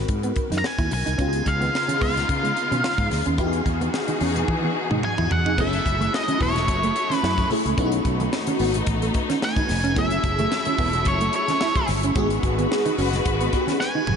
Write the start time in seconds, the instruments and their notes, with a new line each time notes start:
Already playing: fm electric piano C4 D#4 F#4 A#4
0.08 fretless electric bass G#2, kick, closed hi-hat
0.23 clean electric guitar B3, closed hi-hat, muted conga
0.36 muted clean electric guitar stroke, kick, closed hi-hat
0.50 fretless electric bass F#2, clean electric guitar D#4, snare, closed hi-hat, high conga
0.58 lead electric guitar A#5
0.63 lead electric guitar G#5, snare, muted conga
0.79 fretless electric bass D#2, clean electric guitar E4, kick, closed hi-hat
0.91 fretless electric bass B1, lead electric guitar G#5, muted clean electric guitar stroke, open hi-hat, low conga
1.06 fretless electric bass C2, clean electric guitar D#4, closed hi-hat
1.18 fretless electric bass C#2, string section C#3 B3 D#4 F4, fm electric piano B3 D#4 F4 G4, clean electric guitar C#4, kick, closed hi-hat
1.27 fm electric piano G#4
1.33 closed hi-hat
1.46 fretless electric bass C#2, lead electric guitar F5, muted clean electric guitar stroke, kick, closed hi-hat
1.61 clean electric guitar B3, closed hi-hat, high conga
1.74 muted clean electric guitar stroke, snare, muted conga
1.88 clean electric guitar C#4, closed hi-hat, muted conga, high conga
2.01 fretless electric bass C#2, clean electric guitar B3, lead electric guitar F5, kick, open hi-hat
2.17 snare, closed hi-hat, low conga
2.29 fretless electric bass C#3, kick, closed hi-hat, muted conga
2.43 clean electric guitar G#3, closed hi-hat, muted conga
2.56 muted clean electric guitar stroke, closed hi-hat
2.71 fretless electric bass B2, clean electric guitar C#4, closed hi-hat, high conga
2.84 clean electric guitar F4, snare, muted conga
2.98 fretless electric bass G#2, kick, closed hi-hat, muted conga
3.10 fretless electric bass D2, muted clean electric guitar stroke, snare, open hi-hat, low conga
3.26 fretless electric bass D#2, clean electric guitar C#4, closed hi-hat
3.38 fretless electric bass E2, string section E3 D#4 F#4 G#4, fm electric piano B3 D#4 F#4 G4, clean electric guitar E4, kick, closed hi-hat
3.46 fm electric piano G#4
3.53 closed hi-hat, muted conga
3.66 fretless electric bass E2, muted clean electric guitar stroke, kick, closed hi-hat
3.81 clean electric guitar B3, closed hi-hat, high conga
3.93 muted clean electric guitar stroke, snare, muted conga
4.08 clean electric guitar D#4, closed hi-hat, muted conga, high conga
4.21 fretless electric bass E2, clean electric guitar C#4, open hi-hat
4.36 closed hi-hat, low conga
4.48 fretless electric bass E3, kick, high tom, muted conga
4.64 clean electric guitar B3, muted conga
4.76 muted clean electric guitar stroke
4.91 fretless electric bass G#2, clean electric guitar D#4, mid tom, high conga
5.03 lead electric guitar G#5, mid tom, muted conga
5.18 fretless electric bass E2, clean electric guitar E4, mid tom, muted conga, high conga
5.30 fretless electric bass E2, lead electric guitar F#5, muted clean electric guitar stroke, floor tom, low conga
5.46 fretless electric bass F2, clean electric guitar D#4, floor tom
5.58 fretless electric bass F#1, string section F#3 A3 E4, fm electric piano A3 C#4 E4 G#4, clean electric guitar B3, lead electric guitar E5, kick, crash, muted conga
5.73 closed hi-hat, muted conga
5.86 fretless electric bass F#1, muted clean electric guitar stroke, kick, closed hi-hat
5.99 clean electric guitar A3, closed hi-hat, high conga
6.13 lead electric guitar D#5, muted clean electric guitar stroke, snare
6.28 clean electric guitar C#4, closed hi-hat, high conga
6.41 fretless electric bass E1, clean electric guitar B3, lead electric guitar C#5, kick, open hi-hat
6.55 snare, closed hi-hat, low conga
6.68 fretless electric bass F#1, kick, closed hi-hat, muted conga
6.83 clean electric guitar A3, closed hi-hat
6.96 muted clean electric guitar stroke, closed hi-hat
7.10 clean electric guitar C#4, snare, closed hi-hat, high conga
7.16 lead electric guitar B4
7.23 fretless electric bass F#2, clean electric guitar E4, snare
7.38 kick, closed hi-hat, muted conga, high conga
7.50 fm electric piano A3 C#4 E4 G#4, muted clean electric guitar stroke, open hi-hat, low conga
7.66 fretless electric bass C#2, clean electric guitar A3, closed hi-hat
7.77 fretless electric bass B1, fm electric piano A3 C#4 D#4 E4, string section A3 B3 D#4, clean electric guitar B3, kick, closed hi-hat, muted conga
7.86 fm electric piano F#4
7.92 closed hi-hat, muted conga
8.05 fretless electric bass B1, muted clean electric guitar stroke, kick, closed hi-hat
8.20 clean electric guitar A3, closed hi-hat, high conga
8.32 muted clean electric guitar stroke, snare, muted conga
8.47 clean electric guitar C#4, closed hi-hat, muted conga, high conga
8.59 fretless electric bass G#1, clean electric guitar B3, open hi-hat
8.74 closed hi-hat, low conga
8.87 fretless electric bass A1, kick, closed hi-hat, muted conga
9.02 clean electric guitar A3, closed hi-hat
9.14 muted clean electric guitar stroke, kick, closed hi-hat
9.29 clean electric guitar C#4, snare, closed hi-hat, high conga
9.42 lead electric guitar G#5, snare
9.56 clean electric guitar D#4, kick, closed hi-hat, muted conga, high conga
9.68 fretless electric bass F1, muted clean electric guitar stroke, snare, open hi-hat, low conga
9.84 clean electric guitar C#4, closed hi-hat
9.95 fretless electric bass F#1, string section F#3 A3 E4, fm electric piano A3 C#4 E4 G#4, clean electric guitar B3, lead electric guitar E5, kick, closed hi-hat
10.11 closed hi-hat, muted conga
10.24 fretless electric bass F#1, muted clean electric guitar stroke, kick, closed hi-hat
10.39 clean electric guitar A3, closed hi-hat, high conga
10.52 muted clean electric guitar stroke, snare, muted conga
10.65 clean electric guitar C#4, closed hi-hat, high conga
10.78 fretless electric bass E1, clean electric guitar B3, kick, open hi-hat
10.93 closed hi-hat, low conga
11.05 fretless electric bass F#1, lead electric guitar C#5, kick, closed hi-hat
11.21 clean electric guitar A3, closed hi-hat
11.33 lead electric guitar C#5, muted clean electric guitar stroke, closed hi-hat
11.48 clean electric guitar C#4, snare, closed hi-hat, high conga
11.61 clean electric guitar E4, snare, muted conga
11.75 kick, closed hi-hat, high conga
11.88 fretless electric bass G1, muted clean electric guitar stroke, snare, open hi-hat, low conga
12.03 clean electric guitar C#4, closed hi-hat
12.15 fretless electric bass G#1, string section G#3 F#4 B4, clean electric guitar G#3, fm electric piano B3 D#4 F#4 G#4, kick, closed hi-hat, low conga
12.30 closed hi-hat
12.43 fretless electric bass G#1, muted clean electric guitar stroke, kick, closed hi-hat
12.58 clean electric guitar B3, closed hi-hat, high conga
12.71 muted clean electric guitar stroke, snare
12.86 clean electric guitar D#4, closed hi-hat, muted conga, high conga
12.98 fretless electric bass F#1, clean electric guitar C#4, open hi-hat
13.13 snare, closed hi-hat, low conga
13.25 fretless electric bass G#1, kick, closed hi-hat, muted conga
13.40 clean electric guitar B3, closed hi-hat, muted conga
13.53 fm electric piano B3 D#4 F#4 G4, muted clean electric guitar stroke, kick, closed hi-hat
13.61 fm electric piano G#4
13.67 clean electric guitar C#4, snare, closed hi-hat, high conga
13.80 lead electric guitar G#5, snare, muted conga
13.95 clean electric guitar D#4, high conga
14.07 fretless electric bass F1, muted clean electric guitar stroke, mid tom, low conga